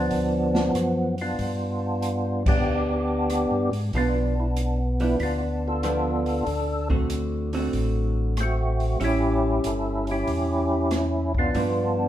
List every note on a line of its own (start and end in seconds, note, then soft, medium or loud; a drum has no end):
0.00 1.15 F3 medium
0.00 1.15 B3 medium
0.00 0.72 D4 loud
0.11 0.71 D2 medium
0.11 kick soft
0.11 open hi-hat soft
0.55 snare medium
0.74 1.34 F#2 medium
0.74 cross-stick medium
0.74 closed hi-hat medium
1.18 2.43 B3 medium
1.18 2.43 D4 medium
1.18 2.43 F4 medium
1.18 open hi-hat soft
1.39 2.62 G2 medium
1.39 kick soft
1.39 open hi-hat soft
2.02 closed hi-hat medium
2.46 3.70 B3 medium
2.46 3.70 D4 medium
2.46 3.70 G4 loud
2.46 kick medium
2.46 crash medium
2.66 3.47 D2 medium
3.30 cross-stick medium
3.30 closed hi-hat medium
3.51 3.71 G2 medium
3.72 3.91 G#2 medium
3.72 open hi-hat soft
3.93 5.16 B1 medium
3.93 4.33 F3 medium
3.93 4.33 B3 medium
3.93 4.33 D4 medium
3.93 4.15 F4 medium
3.93 kick soft
3.93 open hi-hat soft
3.97 5.18 B3 medium
3.97 4.59 D4 medium
4.40 4.48 E4 medium
4.56 4.79 D4 medium
4.56 closed hi-hat medium
5.00 5.18 F3 medium
5.00 5.18 B3 medium
5.00 5.19 D4 medium
5.00 5.16 E4 medium
5.00 open hi-hat soft
5.20 6.43 D2 medium
5.20 6.44 B3 medium
5.20 5.67 D4 medium
5.20 5.22 E4 medium
5.20 5.41 F4 medium
5.20 kick soft
5.20 open hi-hat soft
5.68 6.88 D4 medium
5.68 6.45 F4 medium
5.68 6.88 A4 loud
5.83 6.23 F3 medium
5.83 6.23 B3 medium
5.83 6.23 D4 medium
5.83 cross-stick medium
5.83 closed hi-hat medium
6.26 open hi-hat soft
6.46 7.70 D2 medium
6.46 kick soft
6.46 open hi-hat soft
6.90 7.49 D3 medium
6.90 7.49 A3 medium
6.90 7.49 C4 medium
6.90 7.50 F#4 medium
6.90 kick medium
7.10 closed hi-hat medium
7.53 8.33 D3 medium
7.53 8.34 A3 medium
7.53 8.34 C4 medium
7.53 8.34 F#4 medium
7.53 open hi-hat soft
7.73 8.97 A1 medium
7.73 kick soft
7.73 open hi-hat soft
8.37 8.98 A3 medium
8.37 8.98 C4 medium
8.37 cross-stick medium
8.37 closed hi-hat medium
8.43 8.99 F#4 medium
8.80 open hi-hat soft
9.00 9.60 A1 medium
9.00 10.79 G3 medium
9.00 10.79 C#4 medium
9.00 10.79 E4 medium
9.00 9.03 F#4 medium
9.00 kick soft
9.00 open hi-hat soft
9.04 10.10 C#4 medium
9.04 10.11 E4 medium
9.04 9.68 G4 loud
9.64 10.24 G1 medium
9.64 10.06 A4 medium
9.64 closed hi-hat medium
10.07 11.32 C#4 medium
10.07 open hi-hat soft
10.11 11.33 E4 medium
10.11 10.89 G4 loud
10.27 11.51 E2 medium
10.27 kick soft
10.27 open hi-hat soft
10.91 cross-stick medium
10.91 snare soft
10.91 closed hi-hat medium
11.35 11.96 F4 loud
11.35 kick medium
11.39 12.08 B3 medium
11.39 12.08 D4 medium
11.55 12.08 G2 medium
11.55 12.08 F3 medium
11.55 12.08 B3 medium
11.55 12.08 D4 medium
11.55 kick soft
11.55 open hi-hat soft